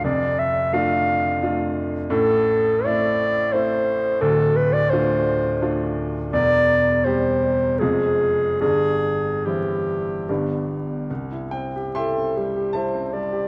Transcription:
<<
  \new Staff \with { instrumentName = "Clarinet" } { \time 3/4 \key d \dorian \tempo 4 = 82 d''8 e''8 f''4. r8 | \key c \major a'4 d''4 c''4 | a'8 b'16 d''16 c''4. r8 | d''4 c''4 aes'4 |
aes'4 g'4. r8 | r4 a'8 g'8 c''8 d''8 | }
  \new Staff \with { instrumentName = "Grand piano" } { \time 3/4 \key d \dorian r2. | \key c \major r2. | r2. | r2. |
r2. | r8 g''8 <e'' g'' c'''>4 <c'' e'' a''>4 | }
  \new Staff \with { instrumentName = "Grand piano" } { \time 3/4 \key d \dorian <f,, f,>4 <a d' f'>4 <a d' f'>4 | \key c \major <a,, a,>4 <a c' e'>4 <a c' e'>4 | <d,, d,>4 <a d' f'>4 <a d' f'>4 | <e,, e,>4 <g c' g'>4 <f,, f, aes c' f'>4 |
<g,, g,>4 <e c' e'>4 <g,, g, g b d'>4 | c,16 e'16 c'16 g'16 e'16 c'16 g16 g'16 e'16 c'16 g16 g'16 | }
>>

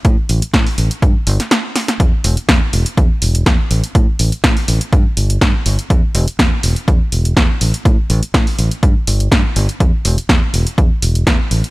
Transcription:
<<
  \new Staff \with { instrumentName = "Fingered electric bass" } { \clef bass \time 4/4 \key e \minor \tempo 4 = 123 a,8 a,,8 a,8 a,,8 g,8 g,,8 r4 | e,8 e,,8 e,8 e,,8 e,8 e,,8 e,8 a,,8 | a,8 a,,8 a,8 a,,8 g,8 g,,8 g,8 g,,8 | e,8 e,,8 e,8 e,,8 e,8 e,,8 e,8 a,,8 |
a,8 a,,8 a,8 a,,8 g,8 g,,8 g,8 g,,8 | e,8 e,,8 e,8 e,,8 e,8 e,,8 e,8 a,,8 | }
  \new DrumStaff \with { instrumentName = "Drums" } \drummode { \time 4/4 <hh bd>8 hho16 hh16 <hh bd sn>16 hho16 hho16 hh16 <hh bd>8 hho16 <hh sn>16 <hh sn>8 <hho sn>16 <hh sn>16 | <hh bd>8 hho16 hh16 <hh bd sn>8 hho16 hh16 <hh bd>8 hho16 hh16 <hh bd sn>8 hho16 hh16 | <hh bd>8 hho16 hh16 <hh bd sn>16 hho16 hho16 hh16 <hh bd>8 hho16 hh16 <hh bd sn>8 hho16 hh16 | <hh bd>8 hho16 hh16 <hh bd sn>8 hho16 hh16 <hh bd>8 hho16 hh16 <hh bd sn>8 hho16 hh16 |
<hh bd>8 hho16 hh16 <hh bd sn>16 hho16 hho16 hh16 <hh bd>8 hho16 hh16 <hh bd sn>8 hho16 hh16 | <hh bd>8 hho16 hh16 <hh bd sn>8 hho16 hh16 <hh bd>8 hho16 hh16 <hh bd sn>8 hho16 hh16 | }
>>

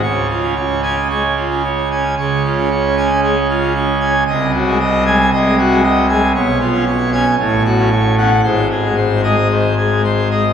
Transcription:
<<
  \new Staff \with { instrumentName = "Pipe organ" } { \time 4/4 \key des \major \tempo 4 = 114 des''8 f'8 des''8 aes''8 des''8 f'8 des''8 aes''8 | des''8 f'8 des''8 aes''8 des''8 f'8 des''8 aes''8 | ees''8 ges'8 ees''8 aes''8 ees''8 ges'8 ees''8 aes''8 | des''8 f'8 des''8 aes''8 des''8 ges'8 des''8 ges''8 |
c''8 aes'8 c''8 ees''8 c''8 aes'8 c''8 ees''8 | }
  \new Staff \with { instrumentName = "Pipe organ" } { \clef bass \time 4/4 \key des \major << { des8. des'16 r8 des'16 r16 aes16 r8 des'16 r8 des'16 r16 | des8. des'16 r8 des'16 r16 aes16 r8 des'16 r8 des'16 r16 | c8. aes16 r8 aes16 r16 c16 aes16 r16 aes16 r8 aes16 r16 | ces8. des'16 r8 des'16 r16 a,8. des'16 r8 des'16 r16 |
aes,8. aes16 r8 aes16 r16 ees16 r8 aes16 r8 aes16 r16 | } \\ { des,1 | des,1 | c,2 c,2 | ces,2 a,,2 |
aes,,1 | } >> }
>>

